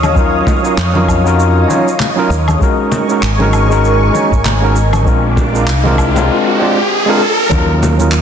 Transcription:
Already playing: D#2 C#5 D#5 F5 D#6
0.03 high conga, low woodblock, shaker
0.14 F#3 C#4 D#4 F4 A#4, kick, shaker
0.47 kick, low conga, shaker
0.62 F#3 C#4 D#4 F4 A#4, shaker
0.78 F2, clap, shaker
0.93 F#3 C#4 D#4 F4 A#4, high conga
1.08 kick, low woodblock, shaker
1.24 C#4 D#4 F4 F#4 A#4, shaker
1.40 shaker
1.67 F#3 C#4 D#4 F4 C#5, high conga, shaker
1.88 shaker
2.00 clap, low conga, shaker
2.16 F#3 C#4 D#4 F4 A#4
2.30 D#2, shaker
2.48 high conga, low woodblock, shaker
2.59 G#3 C#4 D#4 F#4 A#4 G#5 C#6, kick, riser, shaker
2.92 low conga, shaker
3.08 G#3 C#4 D#4 F#4 A#4, shaker
3.23 G#1, clap, shaker
3.38 G#3 C#4 D#4 F#4 A#4, high conga
3.53 low woodblock, shaker
3.69 G#3 C#4 D#4 F#4 A#4, shaker
3.85 shaker
4.12 G#3 C#4 D#4 F#4 C#5, high conga, shaker
4.32 G#1, kick, shaker
4.45 clap, low conga, shaker
4.61 G#3 C#4 D#4 F#4 A#4
4.76 shaker
4.93 high conga, low woodblock, shaker
5.05 A#1 G#3 C4 D4 F4 A#4 F5 D6, kick, shaker
5.37 kick, low conga, shaker
5.53 G#3 C4 D4 F4 A#4, shaker
5.68 C2, clap, shaker
5.84 G#3 C4 D4 F4 A#4, high conga
5.98 kick, low woodblock, shaker
6.14 G#3 C4 D4 F4 A#4, low conga, shaker
6.58 G#3 C4 D4 F4 D5
7.06 G#3 C4 D4 F4 A#4
7.49 D#2 F#3 C#4 D#4 F4 A#4 C#5 D#5 F5 D#6, kick, high conga, shaker
7.83 low conga, shaker
7.98 F#3 C#4 D#4 F4 A#4, high conga, shaker
8.12 clap, shaker

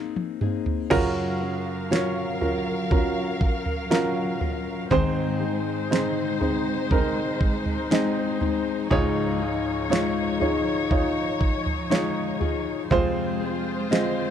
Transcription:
Already playing: A#3 C4 D#4 G#4
0.16 high tom
0.41 A#3 C4 D#4 G#4, mid tom
0.66 floor tom
0.90 F#2 C#3 F#3 C#4 F4 F#4 A#4 F5, kick, floor tom, crash
1.41 C#4 F4 A#4
1.91 F#3 C#4 F4 F#4 A#4 C#5, snare
2.41 C#4 F4 F#4 A#4, floor tom
2.91 C#4 F4 F#4 A#4, kick, floor tom
3.41 kick
3.66 floor tom
3.90 F#3 C#4 F4 F#4 A#4, snare
4.41 C#4 F4 A#4, floor tom
4.90 G#2 D#3 G#3 C4 D#4 G#4 C5, kick, floor tom
5.41 G#3 C4 D#4 G#4
5.91 G#3 C4 D#4 G#4 C5, snare
6.41 G#3 C4 D#4 G#4 C5, floor tom
6.91 C4 D#4 G#4 A#4, kick, floor tom
7.41 kick
7.66 floor tom
7.90 G#3 C4 D#4 G#4 D#5, snare
8.40 G#3 C4 D#4 G#4, floor tom
8.90 C#2 G#2 C#3 F3 G#3 D#4 F4 G#4 C#5, kick, floor tom
9.40 D#4 F4 G#4
9.90 G#3 D#4 F4 G#4 C#5, snare
10.40 D#4 F4 G#4 C#5, floor tom
10.91 D#4 F4 G#4 C#5, kick, floor tom
11.41 kick
11.66 floor tom
11.90 G#3 D#4 F4 G#4 C#5, snare
12.40 D#4 F4 G#4, floor tom
12.90 F2 C3 F3 G#3 C4 F4 G#4 C5, kick, floor tom
13.40 C4 F4 G#4
13.90 G#3 C4 F4 G#4 D#5, snare

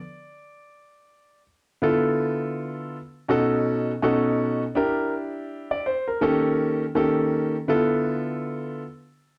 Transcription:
Already playing: D5
1.82 D3 B3 E4 F4 A4
3.29 B2 C#4 D#4 F#4 A4
4.02 B2 C#4 D#4 F#4 A4
4.75 D4 E4 G4 A#4
5.71 D5
5.86 C5
6.08 A#4
6.21 D#3 A#3 C#4 G4 A4
6.95 D#3 A#3 C#4 G4 A4
7.68 D3 B3 E4 F4 A4

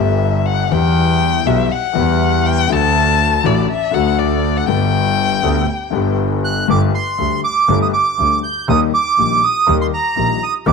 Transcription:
Already playing: G1 G2 D3 G3 B3 G4 E5
0.46 F#5
0.69 E2 E3 G3 B3 G5
0.73 G4
1.46 B1 B2 E3 G3 B3 G4 E5
1.72 F#5
1.94 E2 E3 G3 B3 G4
2.47 G5
2.68 D2 D3 F#3 A3 F#4
2.72 A5
3.44 A1 A2 D3 F#3 A3 F#4 D5
3.71 E5
3.91 D2 D3 F#3 A3 F#4 F#5
4.19 D5
4.57 F#5
4.66 G1 G2 D3 G3 B3 G5
4.70 G4
5.42 D2 D3 G3 B3 G4
5.91 G1 G2 D3 G3 B3 G4
6.44 F#6
6.68 G1 G2 D3 G3 A3 G4 D6
6.95 C6
7.18 D2 D3 G3 A3 G4
7.44 D6
7.69 G1 G2 D3 G3 A3 G4
7.82 D#6
7.93 D6
8.18 D2 D3 G3 A3 G4
8.43 G6
8.68 D#2 D#3 G3 A#3 G4 D#6
8.94 D6
9.18 A#1 A#2 D#3 G3 A#3 G4
9.44 D#6
9.67 D#2 D#3 G3 A#3 G4
9.81 C6
9.94 A#5
10.16 A#1 A#2 D#3 G3 A#3 G4
10.43 D#6
10.66 D#2 D#3 G3 C4 G4 D6

